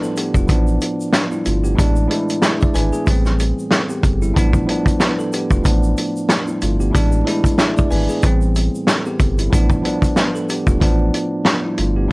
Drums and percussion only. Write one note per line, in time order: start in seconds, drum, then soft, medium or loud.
0.03 shaker soft
0.17 closed hi-hat medium
0.17 shaker medium
0.34 kick medium
0.34 shaker medium
0.48 kick loud
0.48 closed hi-hat loud
0.48 shaker medium
0.67 shaker soft
0.81 closed hi-hat medium
0.81 shaker medium
1.01 shaker medium
1.13 snare loud
1.13 closed hi-hat loud
1.13 shaker medium
1.32 shaker soft
1.45 closed hi-hat medium
1.45 shaker medium
1.64 shaker soft
1.78 kick loud
1.78 closed hi-hat medium
1.78 shaker medium
1.96 shaker medium
2.11 closed hi-hat medium
2.29 closed hi-hat medium
2.29 shaker soft
2.42 snare loud
2.42 snare medium
2.42 closed hi-hat medium
2.42 shaker medium
2.61 kick loud
2.61 shaker soft
2.75 closed hi-hat medium
2.75 shaker medium
2.93 shaker medium
3.07 kick loud
3.07 closed hi-hat loud
3.07 shaker medium
3.25 snare soft
3.25 shaker soft
3.39 closed hi-hat medium
3.39 shaker medium
3.59 shaker medium
3.71 snare loud
3.71 closed hi-hat medium
3.71 shaker medium
3.90 shaker soft
4.03 kick loud
4.03 closed hi-hat medium
4.03 shaker medium
4.22 shaker soft
4.36 kick loud
4.36 closed hi-hat medium
4.36 shaker medium
4.53 kick medium
4.53 shaker soft
4.69 closed hi-hat medium
4.86 kick medium
4.86 closed hi-hat medium
4.86 shaker soft
5.00 snare loud
5.00 snare medium
5.00 closed hi-hat medium
5.00 shaker medium
5.19 shaker soft
5.33 closed hi-hat medium
5.33 shaker medium
5.50 kick loud
5.50 shaker medium
5.65 kick loud
5.65 closed hi-hat loud
5.65 shaker medium
5.83 shaker soft
5.97 closed hi-hat medium
5.97 shaker medium
6.17 shaker medium
6.29 snare loud
6.29 snare medium
6.29 closed hi-hat medium
6.29 shaker medium
6.48 shaker soft
6.62 closed hi-hat medium
6.62 shaker medium
6.80 shaker soft
6.95 kick loud
6.95 closed hi-hat medium
6.95 shaker medium
7.12 shaker medium
7.27 closed hi-hat medium
7.27 shaker soft
7.44 kick loud
7.44 closed hi-hat medium
7.44 shaker medium
7.58 snare loud
7.58 snare medium
7.58 closed hi-hat medium
7.58 shaker medium
7.77 kick loud
7.77 shaker soft
7.91 open hi-hat medium
7.91 shaker medium
8.09 shaker medium
8.23 kick loud
8.23 closed hi-hat loud
8.23 shaker medium
8.41 shaker soft
8.55 closed hi-hat medium
8.55 shaker medium
8.75 shaker soft
8.87 snare loud
8.87 snare medium
8.87 closed hi-hat medium
8.87 shaker medium
9.06 shaker soft
9.20 kick loud
9.20 closed hi-hat medium
9.20 shaker medium
9.39 closed hi-hat medium
9.39 shaker medium
9.53 kick loud
9.53 closed hi-hat medium
9.53 shaker medium
9.70 kick loud
9.70 shaker medium
9.85 closed hi-hat medium
10.02 kick medium
10.02 closed hi-hat medium
10.02 shaker medium
10.16 snare loud
10.16 snare medium
10.16 closed hi-hat medium
10.16 shaker medium
10.35 shaker soft
10.49 closed hi-hat medium
10.49 shaker medium
10.67 kick medium
10.67 shaker medium
10.81 kick loud
10.81 closed hi-hat loud
11.14 closed hi-hat medium
11.45 snare loud
11.45 snare medium
11.45 closed hi-hat loud
11.78 closed hi-hat medium